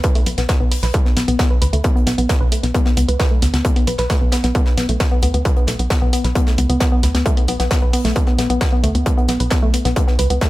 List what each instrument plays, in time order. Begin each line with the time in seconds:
0.03 synth arpeggio sound B4, kick, closed hi-hat
0.15 synth arpeggio sound A3, open hi-hat
0.26 analog synth bass B1, synth arpeggio sound B3, closed hi-hat, open hi-hat
0.38 analog synth bass B1, synth arpeggio sound B3, snare, closed hi-hat
0.49 synth arpeggio sound B3, kick, snare, closed hi-hat
0.60 analog synth bass B1, synth arpeggio sound B3
0.71 synth arpeggio sound B4, open hi-hat
0.83 analog synth bass B1, synth arpeggio sound B4, snare, closed hi-hat
0.94 synth arpeggio sound A3, kick, closed hi-hat
1.05 synth arpeggio sound B3, snare
1.17 analog synth bass B1, synth arpeggio sound B3, snare, closed hi-hat, open hi-hat
1.28 analog synth bass B1, synth arpeggio sound B3, closed hi-hat
1.39 synth arpeggio sound B3, kick, snare, closed hi-hat
1.50 synth arpeggio sound B4
1.62 analog synth bass D2, synth arpeggio sound B4, closed hi-hat, open hi-hat
1.73 analog synth bass D2, synth arpeggio sound A3, closed hi-hat
1.84 synth arpeggio sound B3, kick, closed hi-hat
1.96 synth arpeggio sound B3, closed hi-hat
2.07 analog synth bass B1, synth arpeggio sound B3, snare, closed hi-hat, open hi-hat
2.18 analog synth bass B1, synth arpeggio sound B3, closed hi-hat
2.29 synth arpeggio sound B4, kick, snare, closed hi-hat
2.41 analog synth bass B1, synth arpeggio sound B4
2.52 synth arpeggio sound A3, closed hi-hat, open hi-hat
2.63 analog synth bass B1, synth arpeggio sound B3, snare, closed hi-hat
2.74 synth arpeggio sound B3, kick, closed hi-hat
2.85 synth arpeggio sound B3, snare
2.97 analog synth bass C#2, synth arpeggio sound B3, closed hi-hat, open hi-hat
3.08 analog synth bass C#2, synth arpeggio sound B4, closed hi-hat
3.19 synth arpeggio sound B4, kick, snare, closed hi-hat
3.31 synth arpeggio sound A3
3.42 analog synth bass D2, synth arpeggio sound B3, snare, closed hi-hat, open hi-hat
3.54 analog synth bass D2, synth arpeggio sound B3, snare, closed hi-hat
3.65 synth arpeggio sound B3, kick, closed hi-hat
3.76 synth arpeggio sound B3, open hi-hat
3.87 analog synth bass B1, synth arpeggio sound B4, closed hi-hat, open hi-hat
3.98 analog synth bass B1, synth arpeggio sound B4, snare, closed hi-hat
4.10 synth arpeggio sound A3, kick, snare, closed hi-hat
4.21 analog synth bass B1, synth arpeggio sound B3
4.32 synth arpeggio sound B3, snare, closed hi-hat, open hi-hat
4.44 analog synth bass B1, synth arpeggio sound B3, snare, closed hi-hat
4.55 synth arpeggio sound B3, kick, closed hi-hat
4.66 synth arpeggio sound B4, snare
4.77 analog synth bass B1, synth arpeggio sound B3, snare, closed hi-hat, open hi-hat
4.89 analog synth bass B1, synth arpeggio sound A3, closed hi-hat
5.00 synth arpeggio sound B3, kick, snare, closed hi-hat
5.12 synth arpeggio sound B3
5.22 analog synth bass D2, synth arpeggio sound B3, closed hi-hat, open hi-hat
5.34 analog synth bass D2, synth arpeggio sound B3, closed hi-hat
5.45 synth arpeggio sound B4, kick, closed hi-hat
5.56 synth arpeggio sound B3, closed hi-hat
5.67 analog synth bass B1, synth arpeggio sound A3, snare, closed hi-hat, open hi-hat
5.79 analog synth bass B1, synth arpeggio sound B3, closed hi-hat
5.90 synth arpeggio sound B3, kick, snare, closed hi-hat
6.02 analog synth bass B1, synth arpeggio sound B3
6.13 synth arpeggio sound B3, closed hi-hat, open hi-hat
6.24 analog synth bass B1, synth arpeggio sound B4, snare, closed hi-hat
6.35 synth arpeggio sound B3, kick, closed hi-hat
6.47 synth arpeggio sound A3, snare
6.58 analog synth bass C#2, synth arpeggio sound B3, closed hi-hat, open hi-hat
6.70 analog synth bass C#2, synth arpeggio sound B3, closed hi-hat
6.80 synth arpeggio sound B3, kick, snare, closed hi-hat
6.92 synth arpeggio sound B3
7.03 analog synth bass D2, synth arpeggio sound B4, snare, closed hi-hat, open hi-hat
7.14 analog synth bass D2, synth arpeggio sound B3, snare, closed hi-hat
7.26 synth arpeggio sound A3, kick, closed hi-hat
7.37 synth arpeggio sound B3, open hi-hat
7.48 analog synth bass B1, synth arpeggio sound B3, closed hi-hat, open hi-hat
7.60 analog synth bass B1, synth arpeggio sound B3, snare, closed hi-hat
7.71 synth arpeggio sound B3, kick, snare, closed hi-hat
7.82 analog synth bass B1, synth arpeggio sound B4
7.93 synth arpeggio sound B3, open hi-hat
8.05 analog synth bass B1, synth arpeggio sound A3, snare, closed hi-hat
8.16 synth arpeggio sound B3, kick, closed hi-hat
8.27 synth arpeggio sound B3, snare
8.38 analog synth bass B1, synth arpeggio sound B3, snare, closed hi-hat, open hi-hat
8.50 analog synth bass B1, synth arpeggio sound B3, closed hi-hat
8.61 synth arpeggio sound B4, kick, snare, closed hi-hat
8.72 synth arpeggio sound B3
8.83 analog synth bass D2, synth arpeggio sound A3, closed hi-hat, open hi-hat
8.95 analog synth bass D2, synth arpeggio sound B3, closed hi-hat
9.06 synth arpeggio sound B3, kick, closed hi-hat
9.18 synth arpeggio sound B3, closed hi-hat
9.28 analog synth bass B1, synth arpeggio sound B3, snare, closed hi-hat, open hi-hat
9.40 analog synth bass B1, synth arpeggio sound B4, closed hi-hat
9.50 synth arpeggio sound B3, kick, snare, closed hi-hat
9.63 analog synth bass B1, synth arpeggio sound A3
9.73 synth arpeggio sound B3, closed hi-hat, open hi-hat
9.85 analog synth bass B1, synth arpeggio sound B3, snare, closed hi-hat
9.96 synth arpeggio sound B3, kick, closed hi-hat
10.08 synth arpeggio sound B3, snare
10.19 analog synth bass C#2, synth arpeggio sound B4, closed hi-hat, open hi-hat
10.30 analog synth bass C#2, synth arpeggio sound B3, closed hi-hat
10.41 synth arpeggio sound A3, kick, snare, closed hi-hat